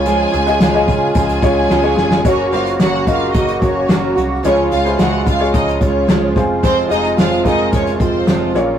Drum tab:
HH |x-xxx-x-xxx-----|x-xxx-x-xxx-x-x-|x-xxx-x-xxx-x-x-|x-xxx-x-xxx-x-x-|
SD |----o-------o-oo|----o-------o---|----o-------o-o-|----o-------o-o-|
BD |------o-o-o-----|o-----o-o-o-----|------o-o-o---o-|o-----o-o-o-----|